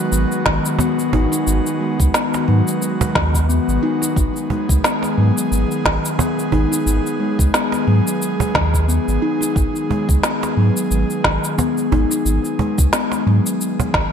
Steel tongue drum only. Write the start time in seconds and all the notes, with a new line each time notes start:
0.46 D#3
0.79 B3
1.13 D#4
1.32 D#4
1.81 G#3
2.14 B3
2.48 F#3
3.16 D#3
3.49 B3
3.83 D#4
4.02 D#4
4.50 G#3
4.84 B3
5.17 F#3
5.85 D#3
6.19 B3
6.52 D#4
6.72 D#4
7.20 G#3
7.54 B3
7.87 F#3
8.55 D#3
8.88 B3
9.22 D#4
9.41 D#4
9.90 G#3
10.23 B3
10.57 F#3
11.24 D#3
11.58 B3
11.92 D#4
12.11 D#4
12.59 G#3
12.93 B3
13.27 F#3
13.94 D#3